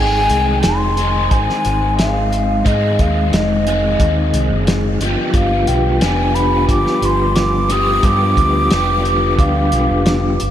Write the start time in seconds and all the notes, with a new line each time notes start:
Already playing: G#1 G#2 D#3 G#3 C4 G#5
0.00 D#4 G#4
0.30 C2, closed hi-hat
0.63 F1 C6, snare, closed hi-hat
0.97 G#2 D#3 G#3 C4 D#4 G#4, closed hi-hat
1.31 G#1 G#5, kick, closed hi-hat
1.50 snare
1.65 G#1, closed hi-hat
1.99 F5, snare, closed hi-hat
2.33 closed hi-hat
2.64 G#2 D#3 G#3 C4 D#4 G#4 D#5, kick, closed hi-hat
2.99 D#2 F5, kick, closed hi-hat
3.32 F1 D#5, snare, closed hi-hat
3.67 D#3 G#3 C4 D#4 G#4, closed hi-hat
3.71 G#2
4.00 D#2, kick, closed hi-hat
4.33 C2, closed hi-hat
4.50 F#1
4.67 snare, closed hi-hat
4.99 G1 G2 D3 F3 B3, closed hi-hat
5.03 F4 G4
5.34 G1 F5, kick, closed hi-hat
5.67 B1 G5, closed hi-hat
6.01 F1 G2 D3 F3 B3 F4 G4 G#5, snare, closed hi-hat
6.35 B5, closed hi-hat
6.68 G1 D6, kick, closed hi-hat
6.87 snare
7.02 G1 C6, closed hi-hat
7.36 D6, snare, closed hi-hat
7.69 G2 D3 F3 B3 F4 G4 D#6, closed hi-hat
8.03 G2 D6, kick, closed hi-hat
8.37 D2, kick, closed hi-hat
8.70 F1 G2 D3 F3 B3 F4 G4, snare, closed hi-hat
9.05 closed hi-hat
9.39 D2 F5, kick, closed hi-hat
9.72 B1, closed hi-hat
9.90 F1
10.06 snare, closed hi-hat
10.40 G1, closed hi-hat